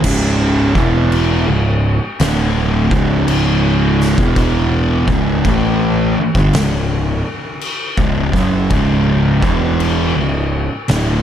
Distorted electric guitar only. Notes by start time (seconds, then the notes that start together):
0.04 C#2 G#2 C#3
0.76 E2 B2 E3
1.49 C#2 G#2
2.20 D2 A2 D3
2.91 C#2 G#2 C#3
4.19 E2 B2 E3
5.09 C#2 G#2 C#3
5.47 A2 E3 A3
6.18 muted distorted electric guitar stroke
6.37 G2 D3
6.55 C#2 G#2
7.98 C#2 G#2
8.34 F#2 C#3 F#3
8.70 C#2 G#2 C#3
9.42 E2 B2 E3
10.16 C#2 G#2
10.89 D2 A2 D3